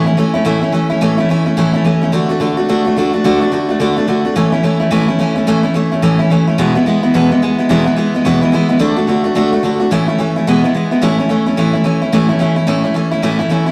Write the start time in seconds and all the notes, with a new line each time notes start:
0.06 A3 C#4 E4
0.17 E3 A3 C#4 E4
0.34 A3 C#4 E4
0.45 A2 E3 A3 C#4 E4
0.61 A3 C#4 E4
0.72 E3 A3 C#4 E4
0.90 A3 C#4 E4
1.01 A2 E3 A3 C#4 E4
1.18 A3 C#4 E4
1.29 E3 A3 C#4 E4
1.46 A3 C#4 E4
1.57 A2 E3 A3 C#4 E4
1.73 A3 C#4 E4
1.84 E3 A3 C#4 E4
2.02 A3 C#4 E4
2.12 D3 A3 D4 F#4
2.29 A3 D4 F#4
2.40 D3 A3 D4 F#4
2.57 A3 D4 F#4
2.69 D3 A3 D4 F#4
2.85 A3 D4 F#4
2.97 D3 A3 D4 F#4
3.13 A3 D4 F#4
3.24 D3 A3 D4 F#4
3.41 A3 D4 F#4
3.52 D3 A3 D4 F#4
3.69 A3 D4 F#4
3.80 D3 A3 D4 F#4
3.96 A3 D4 F#4
4.07 D3 A3 D4 F#4
4.25 A3 D4 F#4
4.36 A2 E3 A3 C#4 E4
4.52 A3 C#4 E4
4.63 E3 A3 C#4 E4
4.80 A3 C#4 E4
4.91 A2 E3 A3 C#4 E4
5.08 A3 C#4 E4
5.19 E3 A3 C#4 E4
5.36 A3 C#4 E4
5.47 A2 E3 A3 C#4 E4
5.63 A3 C#4 E4
5.74 E3 A3 C#4 E4
5.92 A3 C#4 E4
6.02 A2 E3 A3 C#4 E4
6.19 A3 C#4 E4
6.30 E3 A3 C#4 E4
6.47 A3 C#4 E4
6.58 E2 B2 E3 G#3 B3 E4
6.75 E3 G#3 B3 E4
6.86 E3 G#3 B3 E4
7.03 E3 G#3 B3 E4
7.14 E2 B2 E3 G#3 B3 E4
7.31 E3 G#3 B3 E4
7.42 E3 G#3 B3 E4
7.59 E3 G#3 B3 E4
7.69 E2 B2 E3 G#3 B3 E4
7.86 E3 G#3 B3 E4
7.96 E3 G#3 B3 E4
8.14 E3 G#3 B3 E4
8.25 E2 B2 E3 G#3 B3 E4
8.41 E3 G#3 B3 E4
8.52 E3 G#3 B3 E4
8.69 E3 G#3 B3 E4
8.79 D3 A3 D4 F#4
8.96 A3 D4 F#4
9.07 D3 A3 D4 F#4
9.24 A3 D4 F#4
9.35 D3 A3 D4 F#4
9.52 A3 D4 F#4
9.63 D3 A3 D4 F#4
9.80 A3 D4 F#4
9.91 A2 E3 A3 C#4 E4
10.08 A3 C#4 E4
10.18 E3 A3 C#4 E4
10.36 A3 C#4 E4
10.47 E2 B2 E3 G#3 B3 E4
10.64 E3 G#3 B3 E4
10.74 E3 G#3 B3 E4
10.91 E3 G#3 B3 E4
11.02 A2 E3 A3 C#4 E4
11.18 A3 C#4 E4
11.29 E3 A3 C#4 E4
11.46 A3 C#4 E4
11.57 A2 E3 A3 C#4 E4
11.73 A3 C#4 E4
11.84 E3 A3 C#4 E4
12.02 A3 C#4 E4
12.12 A2 E3 A3 C#4 E4
12.29 A3 C#4 E4
12.39 E3 A3 C#4 E4
12.56 A3 C#4 E4
12.67 A2 E3 A3 C#4 E4
12.84 A3 C#4 E4
12.94 E3 A3 C#4 E4
13.11 A3 C#4 E4
13.22 A2 E3 A3 C#4 E4
13.39 A3 C#4 E4
13.50 E3 A3 C#4 E4
13.66 A3 C#4 E4